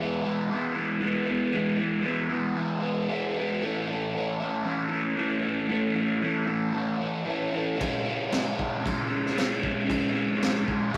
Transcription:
0.00 0.27 E3 medium
0.00 0.25 G#3 medium
0.00 0.24 B3 medium
0.00 0.22 E4 medium
0.22 0.51 G#3 medium
0.22 0.53 B3 loud
0.22 0.54 E4 medium
0.28 0.49 E3 medium
0.50 1.00 E3 medium
0.50 0.78 G#3 medium
0.54 0.75 B3 medium
0.54 0.74 E4 medium
0.74 1.03 B3 medium
0.74 1.05 E4 medium
0.79 1.01 G#3 medium
1.00 1.52 E3 loud
1.00 1.31 G#3 loud
1.00 1.29 B3 loud
1.05 1.26 E4 loud
1.26 1.55 B3 medium
1.26 1.57 E4 medium
1.32 1.53 G#3 medium
1.53 2.02 E3 loud
1.53 1.81 G#3 loud
1.53 1.78 B3 medium
1.57 1.77 E4 loud
1.78 2.05 B3 medium
1.78 2.07 E4 medium
1.82 2.03 G#3 medium
2.02 2.33 E3 medium
2.02 2.31 G#3 medium
2.02 2.30 B3 medium
2.08 2.29 E4 medium
2.29 2.55 G#3 medium
2.29 2.56 B3 medium
2.29 2.59 E4 medium
2.34 2.55 E3 medium
2.55 3.08 E3 medium
2.55 2.84 G#3 medium
2.55 2.82 B3 medium
2.60 2.80 E4 medium
2.80 3.10 B3 medium
2.80 3.12 E4 medium
2.85 3.08 G#3 medium
3.08 3.62 E3 loud
3.08 3.39 G#3 loud
3.08 3.36 B3 loud
3.13 3.34 E4 loud
3.34 3.62 B3 medium
3.34 3.66 E4 medium
3.40 3.63 G#3 medium
3.61 4.45 A2 loud
3.61 4.14 E3 medium
3.61 3.93 A3 loud
3.65 3.91 C#4 loud
3.65 3.87 E4 loud
3.87 4.17 C#4 medium
3.87 4.19 E4 medium
3.94 4.15 A3 medium
4.14 4.44 E3 medium
4.14 4.42 A3 medium
4.14 4.41 C#4 medium
4.19 4.40 E4 medium
4.40 4.64 A3 medium
4.40 4.66 C#4 medium
4.40 4.68 E4 loud
4.44 4.96 A2 medium
4.44 4.63 E3 medium
4.64 5.17 E3 medium
4.64 4.93 A3 medium
4.64 4.91 C#4 medium
4.68 4.88 E4 medium
4.89 5.19 C#4 medium
4.89 5.20 E4 medium
4.94 5.17 A3 medium
5.16 5.66 A2 loud
5.16 5.69 E3 loud
5.16 5.46 A3 loud
5.20 5.44 C#4 loud
5.20 5.41 E4 loud
5.41 5.71 C#4 medium
5.41 5.73 E4 medium
5.47 5.70 A3 medium
5.68 6.22 A2 loud
5.68 6.20 E3 medium
5.68 5.99 A3 loud
5.68 5.97 C#4 loud
5.74 5.94 E4 loud
5.95 6.24 C#4 medium
5.95 6.26 E4 medium
6.01 6.22 A3 medium
6.21 6.49 E3 medium
6.21 6.47 A3 medium
6.25 6.47 C#4 medium
6.25 6.46 E4 medium
6.46 6.73 E3 medium
6.46 6.72 A3 medium
6.46 6.76 C#4 medium
6.46 6.77 E4 medium
6.51 7.03 A2 medium
6.73 7.26 E3 medium
6.73 7.01 A3 medium
6.73 7.01 C#4 medium
6.78 6.98 E4 medium
6.98 7.28 C#4 medium
6.98 7.30 E4 medium
7.03 7.26 A3 medium
7.24 7.77 A2 loud
7.24 7.77 E3 loud
7.24 7.57 A3 loud
7.29 7.56 C#4 loud
7.29 7.53 E4 loud
7.53 7.80 C#4 medium
7.53 7.82 E4 medium
7.58 7.79 A3 medium
7.77 8.28 C#3 loud
7.77 8.10 G#3 medium
7.77 8.07 C#4 loud
7.77 kick loud
7.77 crash medium
7.82 8.04 E4 loud
8.05 8.32 C#4 medium
8.05 8.34 E4 medium
8.10 8.31 G#3 medium
8.29 8.58 C#3 medium
8.29 8.56 G#3 medium
8.29 8.56 C#4 medium
8.29 snare loud
8.29 crash medium
8.34 8.53 E4 medium
8.53 8.83 G#3 medium
8.53 8.85 C#4 medium
8.53 8.86 E4 medium
8.59 8.80 C#3 medium
8.59 kick medium
8.81 9.31 C#3 medium
8.81 9.11 G#3 medium
8.85 9.10 C#4 medium
8.85 9.07 E4 medium
8.85 kick loud
8.85 crash medium
9.07 9.34 C#4 medium
9.07 9.37 E4 medium
9.12 9.32 G#3 medium
9.25 snare soft
9.32 9.83 C#3 medium
9.32 9.61 G#3 loud
9.32 9.61 C#4 loud
9.37 9.58 E4 loud
9.37 snare loud
9.37 crash medium
9.58 9.87 C#4 medium
9.58 9.89 E4 medium
9.63 9.85 G#3 medium
9.63 kick medium
9.84 10.34 C#3 medium
9.84 10.14 G#3 loud
9.84 10.13 C#4 loud
9.89 10.10 E4 loud
9.89 kick loud
9.89 crash medium
10.10 10.38 C#4 medium
10.10 10.40 E4 medium
10.15 10.36 G#3 medium
10.35 10.66 C#3 medium
10.35 10.65 G#3 medium
10.35 10.64 C#4 medium
10.40 10.62 E4 medium
10.40 snare loud
10.40 crash medium
10.63 10.90 G#3 medium
10.63 10.92 C#4 medium
10.63 10.94 E4 loud
10.68 10.89 C#3 medium
10.68 kick medium
10.90 10.97 C#3 medium
10.90 10.97 G#3 medium
10.90 10.97 C#4 medium
10.94 10.97 E4 medium

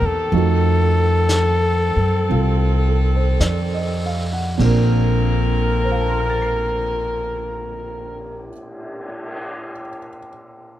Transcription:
0.00 0.30 E2 medium
0.00 0.33 D#3 soft
0.00 4.42 D#3 medium
0.00 0.29 A#3 medium
0.00 0.33 A#3 medium
0.00 0.30 C4 medium
0.00 0.32 C4 soft
0.00 0.29 D4 medium
0.00 0.33 D4 soft
0.00 0.30 G4 medium
0.00 0.34 G4 soft
0.06 3.43 A4 medium
0.32 1.91 F2 medium
0.32 4.59 F3 soft
0.32 4.60 A3 soft
0.32 4.42 C4 medium
0.32 4.60 D#4 soft
0.32 4.60 F#4 soft
0.32 4.42 A4 medium
0.32 brush sweep soft
1.29 snare soft
1.29 hi-hat pedal soft
1.96 2.29 F#2 medium
2.29 3.36 C2 medium
2.29 4.58 C4 soft
2.29 4.60 F4 soft
2.29 brush sweep soft
2.89 3.21 A4 soft
3.15 3.53 C5 soft
3.40 4.55 F2 medium
3.40 3.94 D5 soft
3.40 snare soft
3.40 hi-hat pedal soft
3.74 4.22 D#5 soft
4.06 4.40 F5 soft
4.33 4.74 F#5 soft
4.58 8.47 A#1 medium
4.58 8.49 A#2 soft
4.58 8.47 D3 medium
4.58 8.50 A#3 soft
4.58 8.48 A#3 medium
4.58 8.51 C4 medium
4.58 8.47 C4 medium
4.58 8.52 D4 soft
4.58 8.47 F4 medium
4.58 8.48 A#4 medium
4.58 8.52 A#4 medium
4.58 kick soft
4.58 ride soft
4.64 8.51 A#4 medium
5.43 cymbal swell soft
5.84 9.72 C5 soft
5.92 9.79 F5 soft
6.01 9.88 A5 soft
6.10 9.97 C6 soft
6.20 10.07 F6 soft
6.30 10.17 A6 soft
6.42 10.30 C7 soft

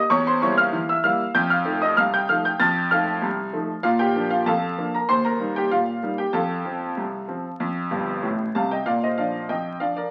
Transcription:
0.00 0.11 D#5 medium
0.00 0.11 D#6 loud
0.10 0.37 E2 loud
0.10 0.26 C#5 loud
0.10 0.26 C#6 loud
0.27 0.42 C5 medium
0.27 0.43 C6 medium
0.42 0.59 G3 medium
0.42 0.59 A#3 medium
0.42 0.60 E4 medium
0.42 0.57 C#5 medium
0.42 0.58 C#6 loud
0.58 0.87 F5 medium
0.58 0.89 F6 loud
0.73 0.99 E3 medium
0.89 1.04 E5 medium
0.89 1.05 E6 medium
1.04 1.21 G3 medium
1.04 1.22 A#3 soft
1.04 1.22 E4 medium
1.04 1.34 F5 medium
1.04 1.35 F6 loud
1.35 1.62 F2 loud
1.35 1.50 G5 medium
1.35 1.51 G6 loud
1.50 1.80 F5 medium
1.50 1.82 F6 loud
1.65 1.82 F3 medium
1.65 1.83 A3 medium
1.65 1.83 D#4 medium
1.82 1.97 D#5 medium
1.82 1.98 D#6 loud
1.97 2.24 C2 medium
1.97 2.13 F5 medium
1.97 2.13 F6 loud
2.14 2.28 G5 medium
2.14 2.29 G6 loud
2.29 2.46 F3 medium
2.29 2.46 A3 soft
2.29 2.47 D#4 soft
2.29 2.44 F5 medium
2.29 2.45 F6 loud
2.45 2.60 G5 medium
2.45 2.60 G6 medium
2.60 2.86 F2 medium
2.60 2.89 A5 medium
2.60 2.89 F6 medium
2.60 2.91 A6 loud
2.91 3.08 F3 medium
2.91 3.08 A3 soft
2.91 3.09 D#4 medium
2.91 3.21 F5 medium
2.91 3.22 F6 loud
3.22 3.49 C2 medium
3.53 3.70 F3 soft
3.53 3.71 A3 soft
3.53 3.71 D#4 medium
3.83 4.10 A#2 medium
3.83 3.99 F4 medium
3.83 4.00 F5 loud
3.99 4.29 G4 medium
3.99 4.31 G5 medium
4.15 4.33 F3 soft
4.15 4.33 A#3 soft
4.15 4.33 D4 medium
4.30 4.46 F4 medium
4.30 4.46 F5 medium
4.46 4.73 F2 medium
4.46 4.91 A4 medium
4.46 4.91 F5 medium
4.46 4.93 A5 loud
4.78 4.95 F3 soft
4.78 4.95 A#3 soft
4.78 4.96 D4 soft
4.95 5.09 A#4 medium
4.95 5.10 A#5 medium
5.09 5.36 D#2 medium
5.09 5.24 C5 medium
5.09 5.25 C6 loud
5.25 5.55 A#4 medium
5.25 5.56 A#5 medium
5.39 5.57 G3 soft
5.39 5.58 A#3 soft
5.39 5.58 D#4 medium
5.56 5.72 G4 medium
5.56 5.72 G5 medium
5.71 5.98 A#2 medium
5.71 6.16 F4 medium
5.71 6.19 F5 medium
6.03 6.20 G3 soft
6.03 6.21 A#3 soft
6.03 6.21 D#4 medium
6.18 6.34 G4 medium
6.18 6.34 G5 medium
6.33 6.61 F2 medium
6.33 8.51 A4 medium
6.33 8.51 F5 medium
6.33 8.53 A5 medium
6.65 6.82 F3 soft
6.65 6.83 C4 soft
6.97 7.24 C2 medium
7.28 7.46 F3 soft
7.28 7.46 C4 soft
7.60 7.87 F2 medium
7.91 8.15 G1 medium
7.91 8.15 G2 medium
8.23 8.47 A1 medium
8.23 8.47 A2 medium
8.55 8.79 C2 medium
8.55 8.79 C3 medium
8.55 8.71 F5 medium
8.55 8.71 A5 medium
8.71 8.87 D#5 medium
8.71 8.87 G5 medium
8.86 9.13 A#2 medium
8.86 9.02 D5 medium
8.86 9.02 F5 medium
9.04 9.19 C5 soft
9.04 9.19 D#5 medium
9.18 9.35 F3 soft
9.18 9.36 D4 soft
9.18 9.48 D5 medium
9.18 9.49 F5 medium
9.49 9.76 F2 soft
9.49 9.79 D#5 medium
9.49 9.81 G5 medium
9.80 9.98 F3 soft
9.80 9.98 D4 soft
9.80 9.95 D5 medium
9.80 9.96 F5 medium
9.97 10.11 A#4 soft
9.97 10.11 D5 medium

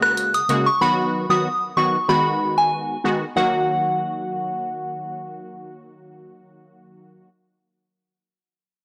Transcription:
0.00 0.42 C#3 medium
0.00 0.42 G#3 medium
0.00 0.42 A#3 medium
0.00 0.42 F#4 loud
0.00 0.16 F#6 medium
0.00 cross-stick loud
0.17 closed hi-hat medium
0.34 0.48 D#6 medium
0.34 closed hi-hat medium
0.49 0.69 C#3 medium
0.49 0.69 G#3 medium
0.49 0.69 A#3 medium
0.49 0.69 F#4 medium
0.49 closed hi-hat medium
0.66 0.80 C#6 medium
0.81 1.26 D#3 loud
0.81 1.26 F#3 medium
0.81 1.26 B3 medium
0.81 1.26 F#4 loud
0.81 0.96 B5 loud
1.29 1.48 D#3 medium
1.29 1.48 F#3 medium
1.29 1.48 B3 medium
1.29 1.48 F#4 medium
1.29 1.43 D#6 medium
1.77 1.97 D#3 medium
1.77 1.97 F#3 medium
1.77 1.97 B3 medium
1.77 1.97 F#4 medium
1.77 1.92 C#6 medium
2.08 2.97 D#3 medium
2.08 2.97 G#3 medium
2.08 2.97 B3 medium
2.08 2.97 F#4 loud
2.08 2.24 B5 medium
2.58 2.71 G#5 medium
3.04 3.24 D#3 medium
3.04 3.24 G#3 medium
3.04 3.24 B3 medium
3.04 3.25 F#4 medium
3.36 7.28 D#3 medium
3.36 7.29 F#3 medium
3.36 7.29 A#3 medium
3.36 7.29 F#4 loud
3.36 5.24 F#5 medium

